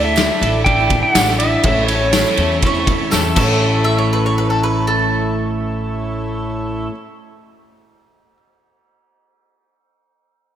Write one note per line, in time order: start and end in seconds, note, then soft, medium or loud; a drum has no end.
0.00 0.26 D2 loud
0.00 0.14 D3 loud
0.00 0.15 D4 medium
0.00 0.16 E4 medium
0.00 1.60 E4 medium
0.00 1.62 E4 medium
0.00 0.17 A4 medium
0.00 1.61 A4 medium
0.00 3.33 A4 medium
0.00 0.16 A4 medium
0.00 1.61 D5 medium
0.00 3.32 A5 medium
0.05 0.15 A3 medium
0.05 0.16 E4 medium
0.05 0.68 E5 loud
0.16 0.37 D3 medium
0.16 0.39 A3 medium
0.16 0.43 D4 medium
0.16 0.40 E4 medium
0.16 0.41 A4 medium
0.16 snare loud
0.16 ride loud
0.16 tambourine medium
0.38 1.00 A1 loud
0.38 0.53 D3 medium
0.38 0.53 A3 medium
0.38 0.53 E4 medium
0.38 ride medium
0.43 0.65 D4 medium
0.43 0.52 A4 medium
0.53 0.79 A3 soft
0.53 0.79 E4 medium
0.53 0.77 A4 medium
0.64 1.14 D3 medium
0.64 1.14 D4 medium
0.64 1.16 E4 medium
0.64 1.17 A4 medium
0.64 1.02 G5 loud
0.64 kick medium
0.64 ride medium
0.78 0.90 A3 medium
0.78 0.92 E4 medium
0.78 0.91 A4 medium
0.90 1.15 D3 medium
0.90 1.15 A3 medium
0.90 1.17 E4 medium
0.90 1.17 A4 medium
0.90 kick medium
0.90 ride medium
1.03 1.41 F#5 loud
1.15 1.54 A1 medium
1.15 1.28 D3 medium
1.15 1.28 A3 medium
1.15 1.40 D4 medium
1.15 1.28 E4 loud
1.15 1.27 A4 medium
1.15 snare loud
1.15 ride loud
1.15 tambourine loud
1.28 1.40 A3 soft
1.28 1.41 E4 medium
1.28 1.40 A4 medium
1.28 snare soft
1.39 1.64 D3 medium
1.39 1.63 A3 medium
1.39 1.64 D4 medium
1.39 1.66 A4 medium
1.39 1.86 E5 loud
1.39 ride medium
1.43 1.65 E4 medium
1.43 1.64 A4 medium
1.63 2.23 A1 loud
1.63 1.89 A2 medium
1.63 1.87 E3 medium
1.63 1.89 A3 medium
1.63 1.89 C#4 medium
1.63 3.35 E4 medium
1.63 3.33 E4 medium
1.63 1.89 E4 loud
1.63 1.90 A4 medium
1.63 3.34 A4 medium
1.63 3.34 C#5 medium
1.63 3.33 C#5 medium
1.63 kick loud
1.63 ride loud
1.87 2.01 E3 medium
1.87 2.02 A3 medium
1.87 2.15 E4 medium
1.87 2.58 C#5 medium
1.87 ride medium
1.91 2.02 C#4 medium
1.91 2.00 A4 medium
2.02 2.15 A3 soft
2.02 2.15 C#4 medium
2.02 2.14 A4 medium
2.13 2.39 A2 medium
2.13 2.38 E3 medium
2.13 2.39 E4 medium
2.13 snare loud
2.13 ride loud
2.13 tambourine medium
2.17 2.39 A3 medium
2.17 2.40 C#4 medium
2.17 2.40 A4 medium
2.37 2.96 E2 loud
2.37 2.51 E3 medium
2.37 2.52 A3 medium
2.37 2.64 E4 medium
2.37 2.65 A4 medium
2.37 ride medium
2.42 2.52 C#4 medium
2.42 2.50 A4 medium
2.52 2.76 A3 soft
2.52 2.75 C#4 medium
2.52 2.74 A4 medium
2.62 3.34 A2 medium
2.62 3.11 A3 medium
2.62 3.12 C#4 medium
2.62 3.12 E4 medium
2.62 3.13 A4 medium
2.62 kick loud
2.62 ride loud
2.66 3.11 C#5 medium
2.75 2.87 A3 medium
2.75 2.88 C#4 medium
2.75 2.87 A4 medium
2.87 3.10 E3 medium
2.87 3.11 A3 medium
2.87 3.11 C#4 medium
2.87 3.12 A4 medium
2.87 kick medium
2.87 ride medium
3.11 3.32 E2 medium
3.11 3.24 A2 medium
3.11 3.24 E3 medium
3.11 3.24 A3 loud
3.11 3.24 C#4 loud
3.11 3.37 E4 medium
3.11 3.35 A4 loud
3.11 3.23 A4 loud
3.11 snare medium
3.11 tambourine loud
3.24 3.38 A3 medium
3.24 3.37 C#4 medium
3.24 3.37 A4 medium
3.35 6.86 A1 loud
3.35 6.88 A2 medium
3.35 6.90 E3 medium
3.35 6.87 A3 medium
3.35 6.85 E4 medium
3.35 6.87 E4 medium
3.35 6.92 E4 loud
3.35 6.87 A4 medium
3.35 6.87 C#5 medium
3.35 6.87 E5 medium
3.35 kick loud
3.35 crash loud
3.35 tambourine medium
3.39 6.93 A3 medium
3.39 6.94 C#4 medium
3.39 6.95 A4 loud
3.39 6.89 C#5 medium
3.84 3.96 E5 loud
3.98 4.10 C#5 medium
4.13 4.23 B4 loud
4.26 4.36 C#5 medium
4.38 4.48 B4 medium
4.50 4.60 A4 medium
4.63 4.85 B4 loud
4.87 8.37 A4 medium